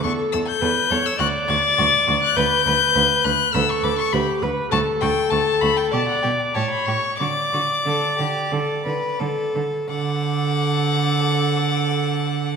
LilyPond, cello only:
\new Staff \with { instrumentName = "Cello" } { \clef bass \time 4/4 \key d \major \tempo 4 = 98 e,8 e,8 e,8 e,8 d,8 d,8 d,8 d,8 | d,8 d,8 d,8 d,8 d,8 d,8 d,8 d,8 | d,8 d,8 d,8 d,8 b,8 b,8 a,8 a,8 | d8 d8 d8 d8 d8 d8 d8 d8 |
d1 | }